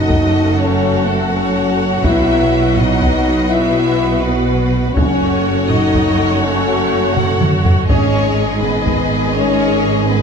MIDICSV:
0, 0, Header, 1, 10, 480
1, 0, Start_track
1, 0, Tempo, 487013
1, 2007, Time_signature, 12, 3, 24, 8
1, 10074, End_track
2, 0, Start_track
2, 0, Title_t, "Violin section"
2, 0, Program_c, 0, 48
2, 0, Note_on_c, 0, 75, 87
2, 569, Note_off_c, 0, 75, 0
2, 574, Note_on_c, 0, 73, 81
2, 1048, Note_on_c, 0, 69, 72
2, 1050, Note_off_c, 0, 73, 0
2, 1287, Note_off_c, 0, 69, 0
2, 1297, Note_on_c, 0, 73, 80
2, 1998, Note_off_c, 0, 73, 0
2, 2015, Note_on_c, 0, 76, 88
2, 2730, Note_on_c, 0, 75, 82
2, 2731, Note_off_c, 0, 76, 0
2, 3449, Note_off_c, 0, 75, 0
2, 3454, Note_on_c, 0, 76, 92
2, 4162, Note_on_c, 0, 71, 79
2, 4171, Note_off_c, 0, 76, 0
2, 4885, Note_off_c, 0, 71, 0
2, 4886, Note_on_c, 0, 73, 89
2, 5593, Note_off_c, 0, 73, 0
2, 5597, Note_on_c, 0, 75, 82
2, 6323, Note_off_c, 0, 75, 0
2, 6335, Note_on_c, 0, 73, 86
2, 7038, Note_off_c, 0, 73, 0
2, 7068, Note_on_c, 0, 78, 79
2, 7299, Note_off_c, 0, 78, 0
2, 7770, Note_on_c, 0, 73, 96
2, 8451, Note_off_c, 0, 73, 0
2, 8502, Note_on_c, 0, 71, 80
2, 9211, Note_on_c, 0, 73, 97
2, 9217, Note_off_c, 0, 71, 0
2, 9931, Note_off_c, 0, 73, 0
2, 9934, Note_on_c, 0, 71, 85
2, 10074, Note_off_c, 0, 71, 0
2, 10074, End_track
3, 0, Start_track
3, 0, Title_t, "Violin section"
3, 0, Program_c, 1, 48
3, 0, Note_on_c, 1, 69, 69
3, 0, Note_on_c, 1, 78, 67
3, 1974, Note_off_c, 1, 69, 0
3, 2016, Note_on_c, 1, 71, 64
3, 4853, Note_off_c, 1, 71, 0
3, 4868, Note_off_c, 1, 78, 0
3, 4880, Note_on_c, 1, 78, 70
3, 4885, Note_on_c, 1, 73, 73
3, 7726, Note_off_c, 1, 78, 0
3, 7729, Note_off_c, 1, 73, 0
3, 7769, Note_on_c, 1, 75, 72
3, 7770, Note_on_c, 1, 68, 76
3, 10074, Note_off_c, 1, 68, 0
3, 10074, Note_off_c, 1, 75, 0
3, 10074, End_track
4, 0, Start_track
4, 0, Title_t, "Viola section"
4, 0, Program_c, 2, 48
4, 0, Note_on_c, 2, 66, 72
4, 4854, Note_off_c, 2, 66, 0
4, 4896, Note_on_c, 2, 69, 68
4, 4902, Note_on_c, 2, 66, 75
4, 7737, Note_off_c, 2, 66, 0
4, 7774, Note_off_c, 2, 69, 0
4, 7783, Note_on_c, 2, 68, 68
4, 7786, Note_off_c, 2, 68, 0
4, 7786, Note_on_c, 2, 68, 75
4, 10074, Note_off_c, 2, 68, 0
4, 10074, End_track
5, 0, Start_track
5, 0, Title_t, "French horn section"
5, 0, Program_c, 3, 60
5, 0, Note_on_c, 3, 63, 96
5, 561, Note_off_c, 3, 63, 0
5, 570, Note_on_c, 3, 61, 93
5, 1039, Note_off_c, 3, 61, 0
5, 1043, Note_on_c, 3, 57, 85
5, 1285, Note_off_c, 3, 57, 0
5, 1288, Note_on_c, 3, 61, 88
5, 1843, Note_off_c, 3, 61, 0
5, 2011, Note_on_c, 3, 64, 105
5, 2715, Note_off_c, 3, 64, 0
5, 2741, Note_on_c, 3, 63, 96
5, 3428, Note_on_c, 3, 64, 105
5, 3440, Note_off_c, 3, 63, 0
5, 4158, Note_off_c, 3, 64, 0
5, 4169, Note_on_c, 3, 59, 88
5, 4870, Note_on_c, 3, 61, 108
5, 4888, Note_off_c, 3, 59, 0
5, 5585, Note_off_c, 3, 61, 0
5, 5593, Note_on_c, 3, 63, 102
5, 6307, Note_off_c, 3, 63, 0
5, 6329, Note_on_c, 3, 61, 106
5, 7043, Note_on_c, 3, 66, 92
5, 7050, Note_off_c, 3, 61, 0
5, 7286, Note_off_c, 3, 66, 0
5, 7765, Note_on_c, 3, 61, 117
5, 8449, Note_off_c, 3, 61, 0
5, 8490, Note_on_c, 3, 59, 92
5, 9211, Note_off_c, 3, 59, 0
5, 9221, Note_on_c, 3, 61, 115
5, 9922, Note_off_c, 3, 61, 0
5, 9932, Note_on_c, 3, 59, 92
5, 10074, Note_off_c, 3, 59, 0
5, 10074, End_track
6, 0, Start_track
6, 0, Title_t, "Trombone section"
6, 0, Program_c, 4, 61
6, 0, Note_on_c, 4, 54, 81
6, 0, Note_on_c, 4, 57, 80
6, 1980, Note_off_c, 4, 57, 0
6, 2016, Note_on_c, 4, 59, 77
6, 4725, Note_off_c, 4, 54, 0
6, 4725, Note_off_c, 4, 59, 0
6, 4893, Note_on_c, 4, 54, 81
6, 4893, Note_on_c, 4, 57, 83
6, 7733, Note_off_c, 4, 54, 0
6, 7733, Note_off_c, 4, 57, 0
6, 7770, Note_on_c, 4, 51, 78
6, 7773, Note_on_c, 4, 56, 75
6, 10074, Note_off_c, 4, 51, 0
6, 10074, Note_off_c, 4, 56, 0
6, 10074, End_track
7, 0, Start_track
7, 0, Title_t, "Cello section"
7, 0, Program_c, 5, 48
7, 0, Note_on_c, 5, 42, 75
7, 2008, Note_off_c, 5, 42, 0
7, 2011, Note_on_c, 5, 47, 69
7, 4851, Note_off_c, 5, 47, 0
7, 4886, Note_on_c, 5, 42, 74
7, 7729, Note_off_c, 5, 42, 0
7, 7776, Note_on_c, 5, 44, 78
7, 10074, Note_off_c, 5, 44, 0
7, 10074, End_track
8, 0, Start_track
8, 0, Title_t, "Timpani"
8, 0, Program_c, 6, 47
8, 4898, Note_on_c, 6, 42, 89
8, 5574, Note_off_c, 6, 42, 0
8, 10074, End_track
9, 0, Start_track
9, 0, Title_t, "Double bass section"
9, 0, Program_c, 7, 48
9, 0, Note_on_c, 7, 30, 79
9, 2013, Note_off_c, 7, 30, 0
9, 2028, Note_on_c, 7, 35, 77
9, 4859, Note_off_c, 7, 35, 0
9, 4897, Note_on_c, 7, 30, 76
9, 7735, Note_off_c, 7, 30, 0
9, 7782, Note_on_c, 7, 32, 81
9, 10074, Note_off_c, 7, 32, 0
9, 10074, End_track
10, 0, Start_track
10, 0, Title_t, "Taiko and cinematic ensemble drums"
10, 96, Note_on_c, 9, 41, 84
10, 195, Note_off_c, 9, 41, 0
10, 2011, Note_on_c, 9, 41, 102
10, 2109, Note_off_c, 9, 41, 0
10, 2733, Note_on_c, 9, 45, 55
10, 2831, Note_off_c, 9, 45, 0
10, 2974, Note_on_c, 9, 41, 77
10, 3072, Note_off_c, 9, 41, 0
10, 4896, Note_on_c, 9, 41, 104
10, 4994, Note_off_c, 9, 41, 0
10, 5614, Note_on_c, 9, 45, 54
10, 5713, Note_off_c, 9, 45, 0
10, 5857, Note_on_c, 9, 41, 84
10, 5956, Note_off_c, 9, 41, 0
10, 7062, Note_on_c, 9, 45, 88
10, 7161, Note_off_c, 9, 45, 0
10, 7302, Note_on_c, 9, 47, 89
10, 7400, Note_off_c, 9, 47, 0
10, 7540, Note_on_c, 9, 43, 95
10, 7638, Note_off_c, 9, 43, 0
10, 7781, Note_on_c, 9, 41, 104
10, 7879, Note_off_c, 9, 41, 0
10, 8499, Note_on_c, 9, 45, 51
10, 8597, Note_off_c, 9, 45, 0
10, 8739, Note_on_c, 9, 41, 84
10, 8838, Note_off_c, 9, 41, 0
10, 10074, End_track
0, 0, End_of_file